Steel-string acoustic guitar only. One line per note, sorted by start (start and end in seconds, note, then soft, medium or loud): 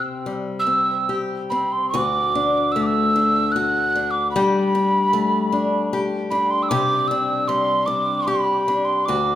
0.00 1.93 C3 medium
0.00 0.65 C4 soft
0.00 1.08 G4 medium
0.26 2.02 G3 soft
0.67 1.50 C4 soft
1.09 1.93 G4 soft
1.52 2.02 C4 soft
1.94 4.34 D2 medium
1.94 3.55 F#4 medium
2.35 3.15 D4 medium
2.76 5.13 A3 medium
3.16 3.95 D4 soft
3.56 4.35 F#4 medium
3.96 4.74 D4 medium
4.36 7.49 G3 medium
4.36 5.93 G4 medium
4.75 5.52 D4 medium
5.13 6.78 A3 medium
5.52 6.31 D4 medium
5.93 6.71 G4 medium
6.31 7.11 D4 medium
6.71 9.07 C3 medium
6.71 8.26 G4 medium
7.11 7.87 D4 medium
7.49 9.16 G3 medium
7.87 8.68 D4 medium
8.28 9.07 G4 medium
8.68 9.35 D4 medium
9.08 9.35 D2 medium
9.08 9.35 F#4 medium